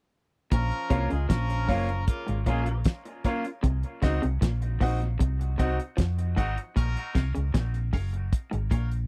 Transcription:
0.52 0.70 A#1 loud
0.52 0.64 A#2 medium
0.52 1.07 F3 loud
0.52 1.08 C#4 loud
0.52 1.08 A#4 loud
0.52 kick loud
0.52 closed hi-hat medium
0.71 closed hi-hat soft
0.90 1.09 C2 medium
0.90 1.02 C3 medium
0.90 1.10 A#3 medium
0.90 1.10 C#4 medium
0.90 1.07 F4 medium
0.90 1.11 F4 medium
0.90 1.07 A#4 medium
0.90 1.07 C#5 medium
0.90 1.08 F5 loud
0.90 kick medium
0.90 closed hi-hat medium
1.10 1.29 C#2 medium
1.10 1.22 C#3 medium
1.10 1.26 G#3 medium
1.10 1.26 F4 medium
1.10 1.26 G#4 medium
1.10 closed hi-hat soft
1.28 1.66 A#1 medium
1.28 1.53 A#2 medium
1.28 2.03 F3 loud
1.28 2.03 C#4 loud
1.28 2.03 A#4 loud
1.28 kick loud
1.28 snare loud
1.28 closed hi-hat loud
1.50 closed hi-hat medium
1.68 2.04 F#1 medium
1.68 1.92 F#2 medium
1.68 1.88 A#3 medium
1.68 1.88 C#4 medium
1.68 1.85 F4 medium
1.68 1.89 F4 medium
1.68 1.85 A#4 medium
1.68 1.86 C#5 medium
1.68 1.86 F5 loud
1.68 kick medium
1.68 open hi-hat medium
1.89 closed hi-hat soft
2.07 2.39 C#3 medium
2.07 2.39 A#3 medium
2.07 2.39 F4 loud
2.07 kick loud
2.07 closed hi-hat loud
2.27 2.46 G#1 medium
2.27 2.39 G#2 medium
2.27 closed hi-hat medium
2.46 2.82 A#1 medium
2.46 2.70 A#2 medium
2.46 2.79 G#3 medium
2.46 2.66 A#3 medium
2.46 2.67 C#4 medium
2.46 2.63 F4 medium
2.46 2.79 F4 medium
2.46 2.67 F4 medium
2.46 2.79 G#4 medium
2.46 2.63 A#4 medium
2.46 2.64 C#5 medium
2.46 2.64 F5 medium
2.46 kick medium
2.46 closed hi-hat medium
2.66 closed hi-hat medium
2.84 kick loud
2.84 snare loud
2.84 closed hi-hat loud
3.05 closed hi-hat soft
3.24 3.44 A#3 medium
3.24 3.44 C#4 medium
3.24 3.41 F4 medium
3.24 3.45 F4 loud
3.24 3.41 A#4 medium
3.24 3.42 C#5 medium
3.24 3.42 F5 loud
3.24 kick medium
3.24 closed hi-hat medium
3.45 closed hi-hat medium
3.63 3.82 C2 loud
3.63 3.75 C3 medium
3.63 kick loud
3.63 closed hi-hat medium
3.83 closed hi-hat soft
4.02 4.21 C#2 medium
4.02 4.14 C#3 medium
4.02 4.22 C4 medium
4.02 4.22 D#4 medium
4.02 4.19 F#4 medium
4.02 4.23 F#4 medium
4.02 4.19 C5 medium
4.02 4.20 D#5 medium
4.02 4.20 F#5 loud
4.02 kick medium
4.02 snare medium
4.02 closed hi-hat medium
4.22 4.41 C2 medium
4.22 4.34 C3 medium
4.22 closed hi-hat soft
4.41 4.78 A#1 medium
4.41 4.65 A#2 medium
4.41 kick loud
4.41 snare loud
4.41 closed hi-hat loud
4.62 closed hi-hat medium
4.80 5.17 A#1 medium
4.80 5.04 A#2 medium
4.80 5.00 C4 medium
4.80 5.00 D#4 medium
4.80 4.97 F#4 medium
4.80 5.01 F#4 medium
4.80 4.98 C5 medium
4.80 4.98 D#5 medium
4.80 4.98 F#5 medium
4.80 kick loud
4.80 open hi-hat medium
5.02 closed hi-hat soft
5.19 5.56 C2 loud
5.19 5.43 C3 medium
5.19 kick loud
5.19 closed hi-hat loud
5.41 closed hi-hat medium
5.58 5.78 C2 medium
5.58 5.70 C3 medium
5.58 5.78 C4 medium
5.58 5.79 D#4 medium
5.58 5.75 F#4 medium
5.58 5.79 F#4 medium
5.58 5.75 C5 medium
5.58 5.76 D#5 medium
5.58 5.76 F#5 medium
5.58 kick medium
5.58 closed hi-hat medium
5.80 closed hi-hat medium
5.97 6.34 F2 medium
5.97 6.21 F3 medium
5.97 kick loud
5.97 snare loud
5.97 closed hi-hat loud
6.18 closed hi-hat medium
6.36 6.56 G#1 medium
6.36 6.49 G#2 medium
6.36 6.56 C4 medium
6.36 6.57 D#4 medium
6.36 6.53 F#4 medium
6.36 6.57 F#4 loud
6.36 6.53 C5 medium
6.36 6.54 D#5 medium
6.36 6.54 F#5 loud
6.36 kick medium
6.36 closed hi-hat medium
6.58 closed hi-hat soft
6.76 6.95 A#1 medium
6.76 6.88 A#2 medium
6.76 7.32 F3 loud
6.76 7.32 C#4 loud
6.76 7.32 A#4 loud
6.76 kick loud
6.76 closed hi-hat medium
6.97 closed hi-hat soft
7.15 7.33 C2 medium
7.15 7.27 C3 medium
7.15 7.31 F4 medium
7.15 7.32 A#4 medium
7.15 7.32 C#5 medium
7.15 7.32 F5 loud
7.15 kick medium
7.15 snare medium
7.15 closed hi-hat medium
7.35 7.53 C#2 medium
7.35 7.46 C#3 medium
7.35 closed hi-hat medium
7.54 7.90 A#1 medium
7.54 7.77 A#2 medium
7.54 kick loud
7.54 snare loud
7.54 closed hi-hat loud
7.74 closed hi-hat medium
7.93 8.29 F#1 medium
7.93 8.16 F#2 medium
7.93 8.09 F4 medium
7.93 8.09 A#4 medium
7.93 8.10 C#5 medium
7.93 8.10 F5 loud
7.93 kick medium
7.93 open hi-hat medium
8.14 closed hi-hat medium
8.33 kick loud
8.33 closed hi-hat loud
8.51 8.70 G#1 medium
8.51 8.63 G#2 medium
8.51 closed hi-hat medium
8.70 9.07 A#1 medium
8.70 8.94 A#2 medium
8.70 8.87 F4 medium
8.70 8.87 A#4 medium
8.70 8.87 C#5 medium
8.70 8.88 F5 loud
8.70 kick medium
8.70 closed hi-hat medium
8.91 closed hi-hat medium

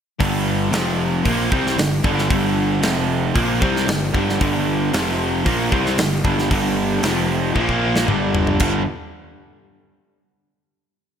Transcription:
0.19 0.69 G1 medium
0.19 0.70 G2 medium
0.19 0.71 D3 loud
0.19 0.72 G3 loud
0.19 kick loud
0.19 open hi-hat medium
0.71 1.21 F1 medium
0.71 1.23 F2 medium
0.71 1.23 C3 medium
0.71 1.23 F3 loud
0.71 snare loud
0.71 open hi-hat medium
1.23 1.50 A#1 medium
1.23 1.50 A#2 loud
1.23 1.50 F3 medium
1.23 1.51 A#3 loud
1.23 kick medium
1.23 open hi-hat medium
1.51 1.76 C2 loud
1.51 1.77 C3 medium
1.51 1.77 G3 loud
1.51 1.77 C4 medium
1.51 kick loud
1.67 snare soft
1.77 2.02 G1 medium
1.77 1.99 G2 medium
1.77 1.99 D3 medium
1.77 snare loud
1.77 open hi-hat medium
2.03 2.28 G1 medium
2.03 2.29 G2 medium
2.03 2.29 D3 medium
2.03 2.30 G3 loud
2.03 kick loud
2.19 snare soft
2.30 2.79 G1 medium
2.30 2.82 G2 medium
2.30 2.83 D3 loud
2.30 2.84 G3 medium
2.30 kick loud
2.30 open hi-hat medium
2.81 3.31 F1 medium
2.81 3.34 F2 medium
2.81 3.34 C3 medium
2.81 3.34 F3 medium
2.81 snare loud
2.81 open hi-hat medium
3.34 3.60 A#1 loud
3.34 3.60 A#2 loud
3.34 3.60 F3 loud
3.34 3.61 A#3 loud
3.34 kick loud
3.34 open hi-hat medium
3.60 3.86 C2 loud
3.60 3.86 C3 medium
3.60 3.87 G3 medium
3.60 3.87 C4 loud
3.60 kick loud
3.76 snare soft
3.87 4.12 G1 medium
3.87 4.08 G2 medium
3.87 4.08 D3 medium
3.87 snare loud
3.87 open hi-hat medium
4.13 4.39 G1 medium
4.13 4.39 G2 medium
4.13 4.39 D3 medium
4.13 4.40 G3 loud
4.13 kick medium
4.29 snare soft
4.40 4.90 G1 medium
4.40 4.92 G2 medium
4.40 4.92 D3 loud
4.40 4.93 G3 loud
4.40 kick loud
4.40 open hi-hat medium
4.93 5.42 F1 loud
4.93 5.45 F2 medium
4.93 5.44 C3 medium
4.93 5.44 F3 loud
4.93 snare loud
4.93 open hi-hat medium
5.44 5.70 A#1 loud
5.44 5.70 A#2 loud
5.44 5.71 F3 loud
5.44 5.71 A#3 loud
5.44 kick medium
5.44 open hi-hat medium
5.72 5.96 C2 loud
5.72 5.97 C3 medium
5.72 5.98 G3 loud
5.72 5.98 C4 loud
5.72 kick loud
5.86 snare soft
5.98 6.22 G1 medium
5.98 6.19 G2 medium
5.98 6.19 D3 medium
5.98 snare loud
5.98 open hi-hat medium
6.24 6.49 G1 loud
6.24 6.48 G2 medium
6.24 6.49 D3 loud
6.24 6.49 G3 loud
6.24 kick loud
6.39 snare soft
6.50 6.99 G1 medium
6.50 7.02 G2 medium
6.50 7.02 D3 loud
6.50 7.02 G3 loud
6.50 kick loud
6.50 open hi-hat medium
7.02 7.51 F1 loud
7.02 7.54 F2 medium
7.02 7.54 C3 medium
7.02 7.53 F3 loud
7.02 snare loud
7.02 open hi-hat medium
7.54 8.04 A#1 medium
7.54 8.06 A#2 medium
7.54 8.06 F3 loud
7.54 8.07 A#3 loud
7.54 kick medium
7.69 kick medium
7.96 snare medium
8.06 8.56 G1 medium
8.06 8.58 G2 medium
8.06 8.59 D3 loud
8.06 8.59 G3 loud
8.06 mid tom medium
8.35 floor tom loud
8.47 floor tom medium
8.60 8.84 G1 loud
8.60 8.81 G2 medium
8.60 8.81 D3 medium
8.60 8.82 G3 loud
8.60 kick loud
8.60 crash medium

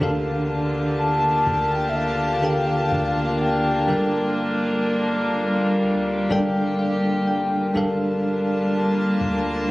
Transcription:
0.00 1.42 D2 loud
0.00 3.84 D3 medium
0.00 1.28 D3 medium
0.00 7.71 A#3 medium
0.00 1.28 D4 medium
0.00 7.71 D4 medium
0.00 7.71 F4 medium
0.00 3.84 G4 medium
0.00 1.29 G4 medium
0.00 1.29 A4 medium
0.00 1.29 A#4 medium
0.00 1.30 F5 loud
0.00 5.78 A5 medium
0.99 1.73 A5 loud
1.46 2.88 D2 loud
1.72 1.90 G5 loud
1.89 1.97 E5 medium
1.96 3.42 F5 loud
2.42 3.38 D3 medium
2.42 3.38 D4 medium
2.42 3.39 G4 medium
2.42 3.39 A4 medium
2.42 3.39 A#4 medium
2.42 3.40 G5 medium
2.92 3.84 D2 loud
3.41 4.37 G5 loud
3.87 5.83 G1 loud
3.87 5.15 G3 medium
3.87 7.71 G3 medium
3.87 5.15 D4 medium
3.87 5.16 A4 medium
3.87 5.16 A#4 medium
3.87 5.17 F5 medium
5.82 6.28 D2 loud
5.82 7.73 G4 medium
6.29 7.71 G1 loud
6.29 7.25 G3 medium
6.29 7.26 D4 medium
6.29 7.26 A4 medium
6.29 7.26 A#4 medium
6.29 6.75 D5 medium
6.29 7.26 G5 loud
6.79 7.24 F5 medium
7.27 7.72 G5 medium
7.74 9.17 G1 loud
7.74 9.02 G3 medium
7.74 9.71 G3 medium
7.74 9.71 A#3 medium
7.74 9.03 D4 medium
7.74 9.71 D4 medium
7.74 9.71 F4 medium
7.74 9.03 A4 medium
7.74 9.03 A#4 medium
7.74 9.04 F5 loud
7.74 9.71 A5 medium
9.21 9.71 D2 loud

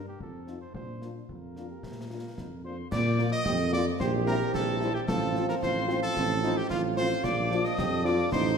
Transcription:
0.00 0.12 G2 medium
0.08 0.20 G4 soft
0.20 0.66 F2 soft
0.20 0.77 C4 soft
0.20 0.59 A4 medium
0.20 concert bass drum medium
0.47 0.57 C4 soft
0.47 0.57 D#4 soft
0.47 0.57 F4 soft
0.47 snare soft
0.61 0.74 C5 soft
0.74 1.20 A#2 medium
0.74 1.24 D4 soft
0.74 1.08 C5 medium
0.74 concert bass drum medium
1.02 1.12 A#3 soft
1.02 1.11 D4 soft
1.02 1.12 F4 soft
1.02 snare soft
1.29 1.74 F2 soft
1.29 1.67 F4 soft
1.29 2.61 A#4 soft
1.29 concert bass drum medium
1.56 1.66 A#3 soft
1.56 1.66 D4 soft
1.56 1.66 F4 soft
1.56 snare soft
1.69 2.07 G4 soft
1.83 2.28 A#2 soft
1.83 concert bass drum medium
1.83 snare medium
2.10 2.20 A#3 soft
2.10 2.20 D4 soft
2.10 2.20 F4 soft
2.10 2.35 F4 medium
2.37 2.83 F2 medium
2.37 2.50 D#4 soft
2.37 concert bass drum medium
2.37 snare soft
2.64 2.74 A#3 soft
2.64 2.74 D4 soft
2.64 2.77 D4 soft
2.64 2.74 F4 soft
2.64 2.77 C5 medium
2.64 2.90 C6 medium
2.91 3.32 A#2 loud
2.91 3.96 F3 medium
2.91 3.96 A#3 medium
2.91 3.29 D5 loud
2.91 3.29 D6 loud
2.91 concert bass drum loud
2.91 snare medium
2.91 crash medium
3.18 3.28 A#3 medium
3.18 3.28 F4 medium
3.18 snare medium
3.31 3.70 D#5 loud
3.31 3.69 D#6 loud
3.31 snare medium
3.46 3.91 F2 loud
3.46 3.58 G4 loud
3.46 concert bass drum medium
3.46 snare medium
3.72 3.82 A#3 medium
3.72 3.82 F4 medium
3.72 3.85 F4 medium
3.72 3.85 D5 loud
3.72 3.78 D6 loud
3.72 snare medium
3.99 4.45 A#1 loud
3.99 5.08 E3 loud
3.99 5.07 C4 loud
3.99 5.05 G4 loud
3.99 4.12 C5 loud
3.99 4.06 C6 loud
3.99 concert bass drum medium
3.99 snare medium
4.26 4.36 G3 medium
4.26 4.36 C4 medium
4.26 4.36 E4 medium
4.26 4.52 A#4 loud
4.26 4.52 A#5 loud
4.26 snare medium
4.54 4.99 A#1 loud
4.54 4.92 A4 loud
4.54 4.96 A5 loud
4.54 concert bass drum medium
4.54 snare medium
4.80 4.90 G3 medium
4.80 4.90 C4 medium
4.80 4.90 E4 medium
4.80 snare medium
4.94 5.01 G4 loud
4.94 5.08 G5 medium
5.07 5.53 A1 loud
5.07 7.20 F3 loud
5.07 7.20 C4 loud
5.07 5.59 F4 loud
5.07 5.45 A4 loud
5.07 5.46 A5 loud
5.07 concert bass drum loud
5.07 snare loud
5.07 crash soft
5.35 5.44 F3 medium
5.35 5.44 C4 medium
5.35 5.44 F4 medium
5.35 snare medium
5.49 5.55 A#4 loud
5.49 5.55 A#5 medium
5.49 snare medium
5.62 6.07 A1 medium
5.62 6.13 F4 loud
5.62 6.00 C5 loud
5.62 6.00 C6 loud
5.62 concert bass drum medium
5.62 snare medium
5.88 5.98 F3 medium
5.88 5.98 C4 medium
5.88 5.98 F4 medium
5.88 snare medium
6.02 6.58 A4 loud
6.02 6.53 A5 loud
6.16 6.61 A1 loud
6.16 6.42 C4 loud
6.16 concert bass drum loud
6.16 snare medium
6.43 6.53 F3 medium
6.43 6.53 C4 medium
6.43 6.56 D#4 loud
6.43 6.53 F4 medium
6.43 snare medium
6.57 6.69 G4 loud
6.57 6.63 G5 loud
6.70 7.15 A1 medium
6.70 6.82 F4 loud
6.70 7.75 F4 loud
6.70 6.77 F5 loud
6.70 concert bass drum medium
6.70 snare medium
6.97 7.07 F3 medium
6.97 7.07 C4 medium
6.97 7.07 F4 medium
6.97 7.25 C5 loud
6.97 7.22 C6 loud
6.97 snare medium
7.24 7.69 A#1 loud
7.24 8.58 F3 loud
7.24 8.32 D4 loud
7.24 7.66 D5 loud
7.24 7.66 D6 loud
7.24 concert bass drum loud
7.24 snare medium
7.24 crash soft
7.51 7.60 F3 medium
7.51 7.60 D4 medium
7.51 7.60 F4 medium
7.51 snare medium
7.65 8.06 D#5 loud
7.65 8.07 D#6 loud
7.65 snare medium
7.78 8.23 F2 loud
7.78 8.03 G4 loud
7.78 concert bass drum loud
7.78 snare medium
8.04 8.14 F3 medium
8.04 8.15 D4 medium
8.04 8.14 F4 medium
8.04 8.30 F4 loud
8.04 8.31 D5 loud
8.04 8.32 D6 loud
8.04 snare medium
8.32 8.58 A1 loud
8.32 8.58 D#4 loud
8.32 8.58 D#4 medium
8.32 8.58 C5 loud
8.32 8.58 C6 loud
8.32 concert bass drum loud
8.32 snare loud

